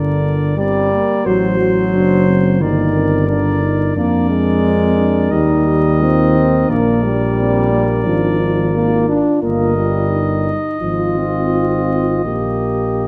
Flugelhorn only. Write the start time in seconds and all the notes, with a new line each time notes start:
Already playing: A#4
0.58 A#4
1.26 C5
2.61 A#4
3.28 A#4
3.96 A#4
9.42 A#4
10.82 F4
12.24 G4